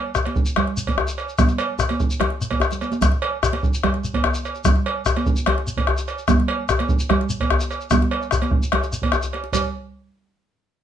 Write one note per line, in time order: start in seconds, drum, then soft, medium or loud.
0.15 bombo rim loud
0.15 djembe tone medium
0.15 high conga soft
0.15 djembe bass medium
0.15 shekere medium
0.25 cowbell soft
0.25 djembe slap medium
0.25 high conga medium
0.36 bombo low loud
0.36 shekere soft
0.46 shekere medium
0.56 bombo rim medium
0.56 cowbell medium
0.56 djembe tone medium
0.56 high conga soft
0.56 djembe bass medium
0.56 low conga medium
0.67 djembe slap medium
0.77 shekere medium
0.87 bombo low medium
0.87 cowbell medium
0.87 high conga medium
0.98 bombo rim loud
0.98 djembe tone medium
0.98 djembe bass medium
1.08 djembe slap medium
1.08 shekere medium
1.18 cowbell medium
1.18 shekere soft
1.28 djembe slap soft
1.28 shekere soft
1.38 bombo rim loud
1.38 bombo low loud
1.38 djembe slap soft
1.38 djembe tone medium
1.38 high conga medium
1.38 djembe bass medium
1.38 low conga medium
1.38 shekere medium
1.49 djembe slap medium
1.49 shekere soft
1.58 cowbell medium
1.58 shekere soft
1.79 bombo rim medium
1.79 djembe slap soft
1.79 djembe tone medium
1.79 djembe bass medium
1.79 shekere medium
1.89 cowbell medium
1.89 djembe slap medium
1.89 high conga medium
2.00 bombo rim soft
2.00 bombo low loud
2.00 shekere soft
2.11 shekere medium
2.20 bombo rim medium
2.20 cowbell soft
2.20 djembe tone medium
2.20 djembe bass medium
2.20 low conga medium
2.30 djembe slap medium
2.41 bombo rim soft
2.41 shekere medium
2.50 bombo rim soft
2.50 bombo low medium
2.50 cowbell medium
2.50 djembe slap soft
2.50 high conga medium
2.60 bombo rim loud
2.60 djembe tone medium
2.60 high conga soft
2.60 djembe bass medium
2.60 shekere soft
2.71 bombo rim soft
2.71 djembe slap medium
2.71 low conga soft
2.71 shekere medium
2.81 cowbell soft
2.81 high conga medium
2.81 shekere soft
2.91 bombo rim soft
2.91 djembe slap soft
2.91 high conga medium
2.91 shekere soft
3.01 bombo rim loud
3.01 bombo low loud
3.01 djembe tone medium
3.01 high conga medium
3.01 djembe bass medium
3.01 low conga medium
3.01 shekere medium
3.12 djembe slap medium
3.22 cowbell medium
3.43 bombo rim loud
3.43 high conga soft
3.43 djembe tone medium
3.43 djembe bass medium
3.43 shekere medium
3.53 cowbell soft
3.53 djembe slap medium
3.53 high conga medium
3.63 bombo low loud
3.63 shekere soft
3.74 shekere medium
3.83 bombo rim medium
3.83 cowbell medium
3.83 djembe tone medium
3.83 high conga soft
3.83 djembe bass medium
3.83 low conga loud
3.94 djembe slap medium
4.04 shekere medium
4.14 bombo low medium
4.14 cowbell medium
4.14 high conga medium
4.24 bombo rim loud
4.24 djembe tone medium
4.24 djembe bass medium
4.34 djembe slap medium
4.34 shekere soft
4.45 cowbell medium
4.45 shekere soft
4.55 djembe slap soft
4.55 shekere soft
4.64 bombo rim loud
4.64 bombo low loud
4.64 djembe tone medium
4.64 high conga medium
4.64 djembe bass medium
4.64 low conga medium
4.64 shekere medium
4.76 djembe slap medium
4.86 cowbell medium
5.06 bombo rim loud
5.06 djembe tone medium
5.06 high conga soft
5.06 djembe bass medium
5.06 shekere medium
5.16 cowbell soft
5.16 djembe slap medium
5.16 high conga medium
5.26 bombo low loud
5.26 shekere soft
5.36 shekere medium
5.46 bombo rim loud
5.46 cowbell medium
5.46 high conga soft
5.46 djembe tone medium
5.46 low conga medium
5.46 djembe bass medium
5.58 djembe slap medium
5.67 shekere medium
5.77 bombo low medium
5.77 cowbell medium
5.77 high conga medium
5.87 bombo rim loud
5.87 djembe tone medium
5.87 djembe bass medium
5.98 djembe slap medium
5.98 shekere medium
6.08 cowbell medium
6.08 shekere soft
6.18 djembe slap soft
6.18 shekere soft
6.28 bombo rim loud
6.28 bombo low loud
6.28 high conga medium
6.28 djembe tone medium
6.28 low conga medium
6.28 djembe bass medium
6.28 shekere medium
6.40 djembe slap medium
6.48 cowbell medium
6.69 bombo rim loud
6.69 djembe tone medium
6.69 high conga soft
6.69 djembe bass medium
6.69 shekere medium
6.79 cowbell medium
6.79 djembe slap medium
6.79 high conga medium
6.89 bombo low loud
6.89 shekere soft
6.99 shekere medium
7.09 bombo rim medium
7.09 cowbell medium
7.09 djembe tone medium
7.09 high conga soft
7.09 djembe bass medium
7.09 low conga loud
7.21 djembe slap medium
7.29 shekere medium
7.40 bombo low medium
7.40 cowbell medium
7.40 high conga medium
7.50 bombo rim loud
7.50 djembe tone medium
7.50 djembe bass medium
7.60 djembe slap medium
7.60 shekere medium
7.71 cowbell medium
7.71 shekere soft
7.81 djembe slap soft
7.81 shekere soft
7.90 bombo rim loud
7.90 bombo low loud
7.90 djembe slap soft
7.90 high conga medium
7.90 djembe tone medium
7.90 low conga loud
7.90 djembe bass medium
7.90 shekere medium
8.02 bombo rim soft
8.02 djembe slap medium
8.11 cowbell medium
8.21 bombo rim soft
8.21 shekere soft
8.31 bombo rim loud
8.31 djembe slap soft
8.31 djembe tone medium
8.31 djembe bass medium
8.31 shekere medium
8.42 cowbell soft
8.42 djembe slap medium
8.42 high conga medium
8.51 bombo rim soft
8.51 bombo low loud
8.51 djembe slap soft
8.62 high conga soft
8.62 shekere medium
8.72 bombo rim loud
8.72 cowbell medium
8.72 djembe tone medium
8.72 low conga medium
8.72 djembe bass medium
8.82 bombo rim soft
8.82 djembe slap medium
8.82 shekere soft
8.92 bombo rim soft
8.92 djembe slap soft
8.92 shekere medium
9.02 bombo low medium
9.02 cowbell medium
9.02 high conga medium
9.12 bombo rim loud
9.12 djembe tone medium
9.12 high conga soft
9.12 djembe bass medium
9.12 shekere soft
9.22 djembe bass soft
9.22 shekere medium
9.33 cowbell medium
9.33 djembe slap medium
9.33 high conga soft
9.44 djembe slap medium
9.53 bombo low medium
9.53 cowbell medium
9.53 djembe bass medium
9.53 low conga medium
9.53 shekere medium